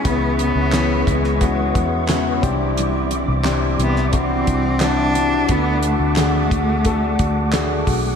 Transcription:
0.04 fingered electric bass C#2, grand piano C#3 B3 C#4 E4 G#4, steel-string acoustic guitar C#3 E3 G#3 B3 E4, cello B3, tonewheel organ B4 E5 C#6, kick, closed hi-hat
0.39 steel-string acoustic guitar G#3 B3 E4, cello B3, closed hi-hat
0.55 fingered electric bass C#2
0.72 steel-string acoustic guitar C#3 E3 G#3 B3 E4, grand piano B3 C#4 E4 G#4, snare, clap, closed hi-hat
1.07 fingered electric bass C#2, cello G#3, steel-string acoustic guitar G#3 B3 E4, kick, closed hi-hat
1.24 snare
1.41 steel-string acoustic guitar E3 G#3 B3 E4, grand piano B3 C#4 E4 F#4, kick, closed hi-hat
1.75 fingered electric bass E2, steel-string acoustic guitar G#3 B3 E4, kick, closed hi-hat
2.08 steel-string acoustic guitar C#3 E3 G#3 B3 E4, grand piano B3 C#4 E4 F#4, snare, clap, closed hi-hat
2.42 fingered electric bass C2, grand piano C3 C4 D4 E4 G4, steel-string acoustic guitar D4 E4, tonewheel organ D5 E5 D6, kick, closed hi-hat
2.77 steel-string acoustic guitar C3 E3 G3 D4 E4, closed hi-hat
3.11 steel-string acoustic guitar G3 D4 E4, closed hi-hat
3.28 fingered electric bass C2
3.44 steel-string acoustic guitar C3 E3 G3 D4 E4, grand piano C4 D4 E4 G4, snare, clap, closed hi-hat
3.79 fingered electric bass C2, steel-string acoustic guitar G3 D4 E4, cello B3, closed hi-hat
3.96 snare
4.12 steel-string acoustic guitar E3 G3 D4 E4, grand piano C4 D4 E4 F#4, cello C4, kick, closed hi-hat
4.47 fingered electric bass C2, steel-string acoustic guitar G3 D4 E4, kick, closed hi-hat
4.80 steel-string acoustic guitar C3 E3 G3 D4 E4, grand piano C4 D4 E4 F#4, cello D4, snare, clap, closed hi-hat
5.15 steel-string acoustic guitar G3 D4 E4, closed hi-hat
5.49 fingered electric bass D2, steel-string acoustic guitar D3 A3 D4 F#4, grand piano D3 A3 D4 F#4 A4, tonewheel organ A3 F#5, cello B3, kick, closed hi-hat
5.83 steel-string acoustic guitar A3 D4 F#4, cello A3, closed hi-hat
5.99 fingered electric bass D2
6.16 steel-string acoustic guitar D3 A3 D4 F#4, grand piano A3 D4 F#4 G#4, snare, clap, closed hi-hat
6.51 fingered electric bass D2, steel-string acoustic guitar A3 D4 F#4, kick, closed hi-hat
6.85 steel-string acoustic guitar D3 A3 D4 F#4, grand piano A3 D4 F#4 A4, kick, closed hi-hat
7.19 fingered electric bass D2, steel-string acoustic guitar A3 D4 F#4, kick, closed hi-hat
7.53 steel-string acoustic guitar D3 A3 D4 F#4, grand piano A3 D4 F#4 G#4, snare, clap, closed hi-hat
7.87 fingered electric bass B1, steel-string acoustic guitar A3 D4 F#4, kick, open hi-hat

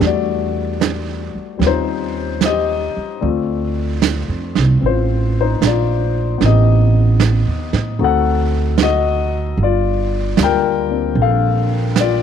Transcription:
Already playing: grand piano G3
0.00 upright bass E2, grand piano A3 D4, brush sweep, snare
0.07 grand piano F#4 D5
0.81 snare, hi-hat pedal
1.35 muted upright bass stroke
1.58 upright bass D#2, grand piano G3 C4 C#4, brush sweep, snare
1.63 grand piano F4 C5
1.67 grand piano D#4
2.41 snare, hi-hat pedal
2.45 grand piano G4 D#5
2.97 muted upright bass stroke
3.21 upright bass D2, grand piano A3 C4 F4 D5, brush sweep
4.02 snare, hi-hat pedal
4.28 upright bass F2
4.55 upright bass C2, snare
4.80 upright bass A1, grand piano C4, brush sweep
4.86 grand piano F4 C5
5.41 grand piano D#4 C5
5.61 upright bass A#1, snare, hi-hat pedal
5.67 grand piano F4 D5
6.38 upright bass A1, grand piano B3 C4, brush sweep, snare
6.45 grand piano D#4 G4 D#5
6.49 grand piano G4
7.20 snare, hi-hat pedal
7.47 upright bass D#2
7.73 upright bass A2, snare
7.99 upright bass D2, grand piano A3 C4 D#4 F#4 A4, brush sweep
8.04 grand piano F#5
8.78 snare, hi-hat pedal
8.82 grand piano F#4 D#5
9.57 upright bass G1, brush sweep
9.63 grand piano F4 D5
10.37 upright bass D2, grand piano G3 A#3 D4 F4, snare, hi-hat pedal
10.43 grand piano A#4 G5
10.89 grand piano A#3 C4 D4
11.15 upright bass A#1, brush sweep
11.21 grand piano A4 F5
11.96 snare, hi-hat pedal
12.00 grand piano F4 D5

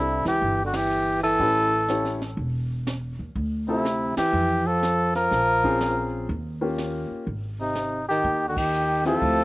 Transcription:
Already playing: upright bass C2, tenor saxophone C3, grand piano D4 E4 G4 A4, muted trumpet E4
0.25 upright bass C#2, tenor saxophone E3, muted trumpet G4, snare
0.42 upright bass G1, brush sweep, kick
0.64 tenor saxophone D3, muted trumpet F#4
0.74 tenor saxophone E3, muted trumpet G4, snare, ride
0.91 hi-hat pedal
1.23 tenor saxophone E3, muted trumpet A4
1.39 upright bass A1, grand piano C#4 E4 G4 B4, brush sweep, kick
1.88 grand piano C#4 E4 G4 C#5, snare, hi-hat pedal
2.05 snare
2.22 snare
2.37 upright bass E1, brush sweep, kick
2.87 snare, hi-hat pedal
3.19 upright bass D#2
3.35 upright bass D2, brush sweep, kick
3.68 tenor saxophone C3, grand piano C4 E4 F4 A4, muted trumpet E4
3.85 snare, hi-hat pedal
4.17 tenor saxophone E3, muted trumpet G4, muted upright bass stroke, snare, ride
4.33 upright bass F2, brush sweep
4.67 tenor saxophone F3, muted trumpet A4
4.83 snare, hi-hat pedal
5.15 tenor saxophone F3, muted trumpet A#4, snare
5.31 upright bass A#1, brush sweep, kick, snare
5.64 grand piano C4 C#4 F4 G#4, kick
5.81 snare, hi-hat pedal
6.29 upright bass D#2, brush sweep, kick
6.61 grand piano A#3 C#4 F4 G4
6.78 snare, hi-hat pedal
7.10 muted upright bass stroke
7.27 upright bass G#1, brush sweep, kick
7.60 tenor saxophone C3, muted trumpet D#4
7.75 snare, hi-hat pedal
8.09 tenor saxophone D#3, muted trumpet G4
8.24 upright bass D#2, brush sweep, kick
8.48 tenor saxophone D3, muted trumpet F#4
8.57 tenor saxophone D#3, muted trumpet G4, kick, ride
8.73 hi-hat pedal
9.05 tenor saxophone F3, grand piano C4 E4 F4 G4, muted trumpet A4, snare
9.21 upright bass D2, brush sweep, kick

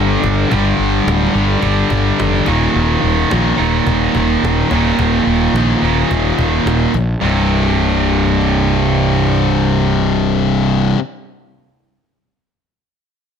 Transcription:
Already playing: fingered electric bass G1, distorted electric guitar G2 D3 G3
0.24 fingered electric bass G1, cajon bass, cajon slap
0.50 fingered electric bass G1, distorted electric guitar G2 D3 G3, cajon bass
0.79 fingered electric bass G1
1.07 fingered electric bass D1, cajon slap
1.33 fingered electric bass G1, distorted electric guitar G2 D3 G3
1.60 fingered electric bass G1, distorted electric guitar G2 D3, cajon bass
1.64 distorted electric guitar G3
1.90 fingered electric bass G1, cajon bass
2.20 fingered electric bass F1, cajon slap
2.45 fingered electric bass D#1, distorted electric guitar D#2 A#2 D#3, cajon bass, cajon slap
2.75 fingered electric bass D#1
3.03 fingered electric bass D#1
3.28 fingered electric bass A#1, distorted electric guitar D#2 A#2, cajon slap
3.32 distorted electric guitar D#3
3.57 fingered electric bass D#1, distorted electric guitar D#2 A#2 D#3
3.86 fingered electric bass D#1, cajon bass
4.15 fingered electric bass D#1, cajon bass
4.42 fingered electric bass D#1, cajon slap
4.70 fingered electric bass D#1, distorted electric guitar D#2 A#2 D#3, cajon bass, cajon slap
4.99 fingered electric bass D#1, cajon bass
5.26 fingered electric bass D#1
5.53 fingered electric bass A#1, distorted electric guitar D#2 A#2, cajon slap
5.58 distorted electric guitar D#3
5.82 fingered electric bass D#1, distorted electric guitar D#2 A#2 D#3
6.11 fingered electric bass D#1, cajon bass
6.38 fingered electric bass D#1, cajon bass
6.65 fingered electric bass D#1, cajon slap
6.94 fingered electric bass A#1, cajon bass
7.21 fingered electric bass C1, distorted electric guitar C2 G2
7.25 distorted electric guitar C3

